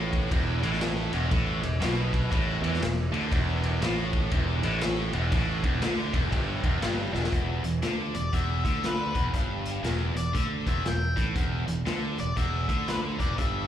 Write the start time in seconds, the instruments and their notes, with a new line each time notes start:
Already playing: fingered electric bass A1, distorted electric guitar A2
0.13 kick, ride
0.31 fingered electric bass E1, distorted electric guitar E2, kick, ride
0.62 fingered electric bass A1, distorted electric guitar A2, ride
0.73 snare
0.81 snare, ride
1.12 fingered electric bass E1, distorted electric guitar E2, ride
1.31 fingered electric bass A1, distorted electric guitar A2, kick, ride
1.62 fingered electric bass E1, distorted electric guitar E2, ride
1.80 fingered electric bass B1, distorted electric guitar B2, snare, ride
2.13 kick, ride
2.31 fingered electric bass A1, distorted electric guitar A2, kick, ride
2.62 fingered electric bass E2, distorted electric guitar E3, ride
2.74 snare
2.80 fingered electric bass E1, distorted electric guitar E2, snare, ride
3.12 fingered electric bass D2, distorted electric guitar D3, ride
3.31 fingered electric bass E1, distorted electric guitar E2, kick, ride
3.63 ride
3.81 fingered electric bass A1, distorted electric guitar A2, snare, ride
4.13 kick, ride
4.31 fingered electric bass E1, distorted electric guitar E2, kick, ride
4.63 fingered electric bass A1, distorted electric guitar A2, ride
4.81 snare, ride
5.13 fingered electric bass E1, distorted electric guitar E2, ride
5.31 fingered electric bass A1, distorted electric guitar A2, kick, ride
5.63 fingered electric bass E1, distorted electric guitar E2, kick, ride
5.81 fingered electric bass D2, distorted electric guitar D3, snare, ride
6.13 fingered electric bass E1, distorted electric guitar E2, kick, ride
6.32 fingered electric bass G1, distorted electric guitar G2, kick, ride
6.63 fingered electric bass E1, distorted electric guitar E2, kick, ride
6.82 fingered electric bass G1, distorted electric guitar G2, snare, ride
7.13 fingered electric bass E1, distorted electric guitar E2, snare
7.24 snare
7.32 fingered electric bass E1, distorted electric guitar E2, kick, closed hi-hat
7.64 fingered electric bass E1, distorted electric guitar E2, closed hi-hat
7.82 fingered electric bass D2, distorted electric guitar D3, snare, closed hi-hat
8.14 fingered electric bass E1, distorted electric guitar E2, lead electric guitar D5, closed hi-hat
8.33 fingered electric bass E1, distorted electric guitar E2, lead electric guitar E5, kick, closed hi-hat
8.65 fingered electric bass D2, distorted electric guitar D3, lead electric guitar E5, kick, closed hi-hat
8.84 lead electric guitar B4, snare, closed hi-hat
9.15 fingered electric bass E1, distorted electric guitar E2, kick, closed hi-hat
9.34 fingered electric bass G1, distorted electric guitar G2, kick, closed hi-hat
9.65 closed hi-hat
9.83 fingered electric bass E1, distorted electric guitar E2, snare, closed hi-hat
10.15 fingered electric bass E1, distorted electric guitar E2, lead electric guitar D5, closed hi-hat
10.34 fingered electric bass D2, distorted electric guitar D3, lead electric guitar E5, kick, closed hi-hat
10.66 fingered electric bass E1, distorted electric guitar E2, lead electric guitar E5, kick, closed hi-hat
10.85 fingered electric bass E1, distorted electric guitar E2, lead electric guitar G5, snare, closed hi-hat
11.16 fingered electric bass A1, distorted electric guitar A2, kick, closed hi-hat
11.35 fingered electric bass E1, distorted electric guitar E2, kick, closed hi-hat
11.67 fingered electric bass E1, distorted electric guitar E2, closed hi-hat
11.86 fingered electric bass D2, distorted electric guitar D3, snare, closed hi-hat
12.18 fingered electric bass E1, distorted electric guitar E2, lead electric guitar D5, closed hi-hat
12.37 fingered electric bass E1, distorted electric guitar E2, lead electric guitar E5, kick, closed hi-hat
12.68 fingered electric bass D2, distorted electric guitar D3, lead electric guitar E5, kick, closed hi-hat
12.88 lead electric guitar B4, snare, closed hi-hat
13.18 fingered electric bass E1, distorted electric guitar E2, lead electric guitar D5, kick, closed hi-hat
13.37 fingered electric bass G1, distorted electric guitar G2, lead electric guitar E5, kick, closed hi-hat